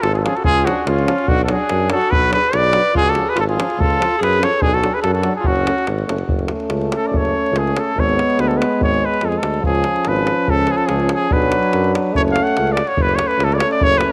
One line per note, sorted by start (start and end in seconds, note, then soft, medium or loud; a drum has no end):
0.01 0.26 G#1 loud
0.01 0.11 F4 medium
0.01 0.13 A4 medium
0.01 davul high medium
0.12 0.19 F4 medium
0.12 0.19 G#4 medium
0.12 davul high soft
0.17 0.23 F#4 medium
0.17 0.25 A4 medium
0.22 0.32 F3 medium
0.22 0.33 C#4 medium
0.22 0.38 F4 medium
0.22 0.37 G#4 medium
0.22 davul high medium
0.36 0.45 F#4 medium
0.36 0.44 A4 medium
0.36 davul high soft
0.44 0.68 C#2 loud
0.44 0.71 F4 medium
0.44 0.67 G#4 loud
0.44 davul low loud
0.58 davul high soft
0.65 0.73 F3 medium
0.65 0.73 C#4 medium
0.65 0.88 F#4 medium
0.65 davul high medium
0.69 0.89 D4 medium
0.86 1.09 C#2 loud
0.86 1.30 C#4 medium
0.86 1.30 F4 medium
0.86 davul high medium
0.99 davul high soft
1.05 1.14 F3 medium
1.05 1.15 C#4 medium
1.05 davul high medium
1.18 davul high soft
1.27 1.51 B1 loud
1.27 1.43 D4 medium
1.27 1.42 F#4 loud
1.27 davul low loud
1.39 davul high soft
1.44 1.56 D4 medium
1.44 1.55 F#4 medium
1.44 1.53 A4 medium
1.48 1.57 F#3 medium
1.48 1.91 G#4 medium
1.48 davul high medium
1.54 1.93 D4 medium
1.69 1.93 F#2 loud
1.69 davul high medium
1.90 1.98 F#3 medium
1.90 1.98 D4 medium
1.90 2.12 A4 loud
1.90 davul high medium
1.94 2.15 F#4 medium
2.01 davul high soft
2.11 2.34 B1 medium
2.11 2.32 B4 loud
2.11 davul low loud
2.15 2.33 F#4 medium
2.22 davul high soft
2.29 2.38 F#3 medium
2.29 2.40 D4 medium
2.29 davul high medium
2.33 2.55 G#4 medium
2.33 2.57 B4 loud
2.43 davul high soft
2.53 2.76 B1 loud
2.53 2.93 B4 medium
2.53 2.96 D5 loud
2.53 davul high medium
2.64 davul high soft
2.72 2.81 F#3 medium
2.72 2.82 D4 medium
2.72 davul high medium
2.85 davul high soft
2.94 3.18 C#2 medium
2.94 3.05 F4 medium
2.94 3.11 G#4 loud
2.94 davul low medium
3.04 3.26 F#4 medium
3.04 davul high soft
3.09 3.31 A4 medium
3.15 3.24 F3 medium
3.15 3.25 C#4 medium
3.15 davul high medium
3.25 3.35 G#4 medium
3.29 3.38 B4 medium
3.35 3.59 G#1 loud
3.35 3.40 F4 medium
3.35 davul high medium
3.40 3.44 A4 medium
3.48 3.82 F4 medium
3.48 3.81 G#4 medium
3.48 davul high soft
3.56 3.64 F3 medium
3.56 3.65 C#4 medium
3.56 davul high medium
3.70 davul high soft
3.78 4.01 C#2 medium
3.78 4.21 A4 loud
3.78 davul low loud
3.82 4.17 F4 medium
3.90 davul high soft
3.97 4.07 F3 medium
3.97 4.06 C#4 medium
4.02 davul high medium
4.18 4.43 F#2 medium
4.18 4.42 G#4 medium
4.23 4.46 B4 medium
4.23 davul high medium
4.33 davul high soft
4.39 4.48 F3 medium
4.39 4.48 C#4 medium
4.39 4.63 A4 medium
4.39 davul high medium
4.44 4.63 C#5 medium
4.53 davul high soft
4.61 4.85 B1 loud
4.61 4.75 D4 medium
4.61 4.76 G#4 loud
4.61 davul low loud
4.73 4.97 F#4 medium
4.73 4.96 A4 medium
4.73 davul high soft
4.81 4.89 F#3 medium
4.81 4.90 D4 medium
4.81 davul high medium
4.94 5.04 G#4 medium
4.94 5.01 B4 medium
5.02 5.26 F#2 loud
5.02 5.13 F#4 medium
5.02 5.13 A4 medium
5.02 davul high medium
5.13 5.33 F#4 medium
5.13 5.33 A4 medium
5.13 davul high soft
5.23 5.32 F#3 medium
5.23 5.34 D4 medium
5.23 davul high medium
5.36 5.50 F4 medium
5.36 5.48 G#4 medium
5.44 5.68 F#1 medium
5.44 5.87 F#4 loud
5.44 davul low medium
5.48 5.88 C#4 medium
5.56 davul high soft
5.65 5.74 A3 soft
5.65 5.73 C#4 medium
5.65 davul high medium
5.78 davul high soft
5.87 6.06 G#1 medium
5.87 davul high medium
5.98 davul high soft
6.07 6.26 F#1 medium
6.07 6.16 A3 medium
6.07 6.15 C#4 medium
6.07 davul high medium
6.18 davul high soft
6.27 6.50 F#1 medium
6.27 7.92 A3 medium
6.27 7.93 C#4 medium
6.27 davul low medium
6.39 davul high soft
6.48 davul high medium
6.60 davul high soft
6.69 6.93 C#2 loud
6.69 davul high medium
6.81 davul high soft
6.92 7.08 A4 medium
6.92 davul high medium
7.07 7.34 F#1 medium
7.07 7.19 D5 medium
7.14 7.60 C#5 medium
7.14 davul low medium
7.25 davul high soft
7.46 davul high soft
7.52 7.75 C#2 loud
7.56 7.81 G#4 medium
7.56 davul high medium
7.67 davul high soft
7.77 8.01 A4 medium
7.77 davul high medium
7.95 8.19 G#1 loud
7.95 9.63 G#3 medium
7.95 9.44 B3 medium
7.95 davul low medium
8.00 8.42 C#5 medium
8.09 davul high soft
8.19 davul high medium
8.30 davul high soft
8.38 8.61 D2 loud
8.38 8.49 B4 medium
8.38 davul high medium
8.48 8.59 A4 medium
8.48 davul high soft
8.57 8.82 B4 medium
8.62 davul high medium
8.80 9.03 G#1 loud
8.80 9.07 C#5 medium
8.80 davul low loud
8.94 davul high soft
9.05 9.26 B4 medium
9.14 davul high soft
9.21 9.41 F2 medium
9.21 9.30 A4 medium
9.21 davul high medium
9.29 9.40 G#4 medium
9.29 davul high soft
9.38 9.61 D2 medium
9.38 9.65 A4 medium
9.43 davul high medium
9.54 davul high soft
9.61 9.87 C#2 loud
9.61 11.30 F3 medium
9.61 11.32 C#4 medium
9.61 davul low medium
9.66 10.09 G#4 medium
9.75 davul high soft
9.84 davul high medium
9.96 davul high soft
10.05 10.29 G#1 loud
10.05 10.51 B4 medium
10.05 davul high medium
10.16 davul high soft
10.27 davul high medium
10.47 10.70 C#2 loud
10.47 10.73 A4 medium
10.47 davul low medium
10.58 davul high soft
10.67 davul high medium
10.71 10.79 G#4 medium
10.77 10.88 A4 medium
10.77 davul high soft
10.86 11.12 C#2 loud
10.86 11.12 G#4 medium
10.86 davul high medium
11.00 davul high soft
11.09 davul high medium
11.14 11.34 G#4 medium
11.30 11.55 B1 loud
11.30 12.14 F#3 medium
11.30 12.16 D4 medium
11.30 11.94 B4 medium
11.30 davul low loud
11.42 davul high soft
11.52 davul high medium
11.63 davul high soft
11.73 11.96 F#2 loud
11.73 davul high medium
11.84 davul high soft
11.95 davul high medium
12.13 12.38 F#1 loud
12.13 12.80 A3 medium
12.13 12.81 C#4 medium
12.13 12.22 C#5 loud
12.13 davul low medium
12.28 12.45 F5 medium
12.28 davul high soft
12.36 davul high medium
12.43 12.74 F#5 medium
12.43 davul high soft
12.57 12.80 C#2 loud
12.57 davul high medium
12.67 davul high soft
12.72 12.89 D5 medium
12.77 davul high medium
12.87 13.03 C#5 medium
12.87 davul high soft
12.96 13.20 F#1 loud
12.96 14.12 A3 medium
12.96 14.12 C#4 medium
12.96 davul low medium
13.02 13.17 B4 loud
13.09 davul high soft
13.15 13.29 C#5 medium
13.15 davul high medium
13.27 13.46 B4 medium
13.27 davul high soft
13.38 13.61 C#2 loud
13.38 davul high medium
13.44 13.56 A4 medium
13.52 13.59 D5 medium
13.52 davul high soft
13.57 13.69 C#5 medium
13.57 davul high medium
13.72 13.85 D5 loud
13.81 14.04 F#1 loud
13.81 13.99 C#5 loud
13.81 davul low loud
13.93 davul high soft
13.98 14.12 B4 medium
13.98 davul high medium